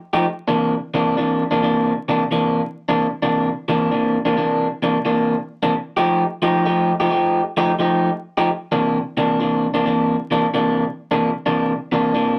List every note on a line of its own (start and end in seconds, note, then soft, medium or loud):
0.13 0.25 F3 medium
0.13 0.25 A3 medium
0.13 0.25 D#4 medium
0.13 0.25 G4 medium
0.48 0.75 C3 medium
0.48 0.74 E3 medium
0.48 0.74 A#3 medium
0.48 0.74 D4 medium
0.94 1.17 C3 medium
0.94 1.17 E3 medium
0.94 1.16 A#3 medium
0.94 1.16 D4 medium
1.17 1.43 C3 medium
1.17 1.43 E3 medium
1.17 1.43 A#3 medium
1.17 1.43 D4 medium
1.51 1.61 C3 medium
1.51 1.61 E3 medium
1.51 1.62 A#3 medium
1.51 1.62 D4 medium
1.62 1.92 C3 medium
1.62 1.92 E3 medium
1.62 1.93 A#3 medium
1.62 1.93 D4 medium
2.08 2.23 C3 medium
2.08 2.23 E3 medium
2.08 2.23 A#3 medium
2.08 2.23 D4 loud
2.31 2.61 C3 medium
2.31 2.61 E3 medium
2.31 2.61 A#3 medium
2.31 2.61 D4 medium
2.89 3.07 C3 medium
2.89 3.07 E3 medium
2.89 3.07 A#3 medium
2.89 3.06 D4 medium
3.22 3.49 C3 medium
3.22 3.49 E3 medium
3.22 3.49 A#3 medium
3.22 3.49 D4 medium
3.68 3.91 C3 medium
3.68 3.91 E3 medium
3.68 3.91 A#3 medium
3.68 3.90 D4 medium
3.91 4.18 C3 medium
3.91 4.18 E3 medium
3.91 4.18 A#3 medium
3.91 4.17 D4 medium
4.25 4.35 C3 medium
4.25 4.36 E3 medium
4.25 4.36 A#3 medium
4.25 4.36 D4 medium
4.37 4.66 C3 medium
4.37 4.66 E3 medium
4.37 4.67 A#3 medium
4.37 4.67 D4 medium
4.82 4.97 C3 medium
4.82 4.97 E3 medium
4.82 4.97 A#3 medium
4.82 4.97 D4 loud
5.05 5.35 C3 medium
5.05 5.35 E3 medium
5.05 5.35 A#3 medium
5.05 5.35 D4 medium
5.63 5.74 C3 medium
5.63 5.74 E3 medium
5.63 5.74 A#3 medium
5.63 5.74 D4 medium
5.97 6.24 F3 medium
5.97 6.24 A3 medium
5.97 6.23 D#4 medium
5.97 6.23 G4 medium
6.42 6.65 F3 medium
6.42 6.65 A3 medium
6.42 6.64 D#4 medium
6.42 6.64 G4 medium
6.65 6.92 F3 medium
6.65 6.92 A3 medium
6.65 6.92 D#4 medium
6.65 6.92 G4 medium
7.00 7.09 F3 medium
7.00 7.10 A3 medium
7.00 7.10 D#4 medium
7.00 7.10 G4 loud
7.10 7.40 F3 medium
7.10 7.41 A3 medium
7.10 7.41 D#4 medium
7.10 7.41 G4 medium
7.57 7.71 F3 medium
7.57 7.72 A3 medium
7.57 7.72 D#4 medium
7.57 7.72 G4 medium
7.79 8.09 F3 medium
7.79 8.09 A3 medium
7.79 8.09 D#4 medium
7.79 8.10 G4 medium
8.37 8.49 F3 medium
8.37 8.49 A3 medium
8.37 8.48 D#4 medium
8.37 8.48 G4 medium
8.72 8.98 C3 medium
8.72 8.98 E3 medium
8.72 8.98 A#3 medium
8.72 8.98 D4 medium
9.17 9.40 C3 medium
9.17 9.39 E3 medium
9.17 9.39 A#3 medium
9.17 9.39 D4 medium
9.40 9.67 C3 medium
9.40 9.67 E3 medium
9.40 9.66 A#3 medium
9.40 9.66 D4 medium
9.74 9.84 C3 medium
9.74 9.84 E3 medium
9.74 9.85 A#3 medium
9.74 9.85 D4 medium
9.85 10.15 C3 medium
9.85 10.15 E3 medium
9.85 10.16 A#3 medium
9.85 10.16 D4 medium
10.31 10.46 C3 medium
10.31 10.46 E3 medium
10.31 10.46 A#3 medium
10.31 10.46 D4 loud
10.54 10.84 C3 medium
10.54 10.84 E3 medium
10.54 10.84 A#3 medium
10.54 10.84 D4 medium
11.11 11.30 C3 medium
11.11 11.30 E3 medium
11.11 11.30 A#3 medium
11.11 11.29 D4 medium
11.46 11.73 C3 medium
11.46 11.73 E3 medium
11.46 11.72 A#3 medium
11.46 11.72 D4 medium
11.92 12.14 C3 medium
11.92 12.14 E3 medium
11.92 12.13 A#3 medium
11.92 12.13 D4 medium
12.14 12.39 C3 medium
12.14 12.39 E3 medium
12.14 12.39 A#3 medium
12.14 12.39 D4 medium